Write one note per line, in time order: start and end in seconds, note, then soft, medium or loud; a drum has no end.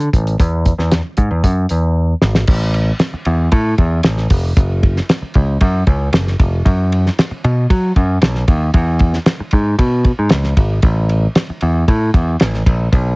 0.00 closed hi-hat soft
0.13 0.35 A1 loud
0.13 kick medium
0.13 closed hi-hat medium
0.27 closed hi-hat medium
0.40 0.72 E2 loud
0.40 kick loud
0.40 closed hi-hat medium
0.66 kick medium
0.66 closed hi-hat medium
0.78 1.00 E2 medium
0.78 snare soft
0.92 snare loud
0.92 closed hi-hat medium
1.17 1.28 G#2 loud
1.17 kick medium
1.17 closed hi-hat medium
1.31 1.41 E2 medium
1.44 1.65 F#2 loud
1.44 kick medium
1.44 closed hi-hat medium
1.69 2.13 E2 medium
1.69 closed hi-hat medium
2.22 2.44 G#1 loud
2.22 snare medium
2.35 snare medium
2.47 2.91 A1 loud
2.47 kick loud
2.47 crash loud
2.74 ride soft
2.99 snare loud
2.99 ride medium
3.14 muted picked electric bass stroke medium
3.25 3.48 E2 medium
3.25 ride medium
3.52 3.74 A2 loud
3.52 kick loud
3.52 ride medium
3.78 4.00 E2 loud
3.78 kick medium
3.78 ride medium
4.03 4.27 A1 medium
4.03 snare loud
4.03 ride medium
4.17 snare soft
4.30 4.52 F1 medium
4.30 kick medium
4.30 open hi-hat medium
4.30 ride medium
4.57 5.00 F#1 loud
4.57 kick loud
4.57 hi-hat pedal medium
4.57 ride medium
4.83 kick loud
4.83 ride soft
4.97 snare soft
5.09 snare loud
5.09 ride medium
5.22 muted picked electric bass stroke medium
5.34 5.57 C#2 medium
5.34 kick medium
5.34 ride soft
5.61 5.83 F#2 loud
5.61 kick loud
5.61 ride medium
5.87 6.08 C#2 loud
5.87 kick medium
5.87 ride medium
6.13 6.34 F#1 loud
6.13 snare loud
6.13 ride medium
6.27 snare soft
6.40 6.61 F1 loud
6.40 kick medium
6.40 ride medium
6.65 7.08 F#2 loud
6.65 kick loud
6.65 ride medium
6.92 ride medium
7.06 snare soft
7.19 snare loud
7.19 ride medium
7.31 muted picked electric bass stroke medium
7.44 7.66 B2 loud
7.44 ride medium
7.70 7.91 F#3 medium
7.70 kick loud
7.70 ride medium
7.96 8.18 F#2 loud
7.96 kick medium
7.96 ride medium
8.22 8.43 B1 loud
8.22 snare loud
8.22 ride medium
8.35 snare soft
8.48 8.69 D#2 medium
8.48 kick loud
8.48 ride medium
8.74 9.17 E2 loud
8.74 kick loud
8.74 ride medium
8.99 kick medium
8.99 ride medium
9.13 snare soft
9.26 snare loud
9.26 ride medium
9.40 muted picked electric bass stroke medium
9.51 9.74 G#2 medium
9.51 kick medium
9.51 ride medium
9.78 10.11 B2 medium
9.78 kick medium
9.78 ride medium
10.05 kick loud
10.05 ride medium
10.19 10.29 G#2 medium
10.29 10.53 C#2 medium
10.29 snare loud
10.29 ride medium
10.44 snare soft
10.57 10.79 G#1 medium
10.57 kick medium
10.57 ride medium
10.82 11.26 A1 loud
10.82 kick loud
10.82 ride medium
11.09 ride medium
11.35 snare loud
11.35 ride medium
11.50 muted picked electric bass stroke medium
11.61 11.83 E2 medium
11.61 ride medium
11.88 12.10 A2 loud
11.88 kick loud
11.88 ride medium
12.14 12.35 E2 medium
12.14 kick loud
12.14 ride medium
12.40 12.62 A1 loud
12.40 snare loud
12.40 ride medium
12.54 snare soft
12.66 12.88 A#1 medium
12.66 kick medium
12.66 ride medium
12.92 13.16 B1 loud
12.92 kick loud
12.92 ride medium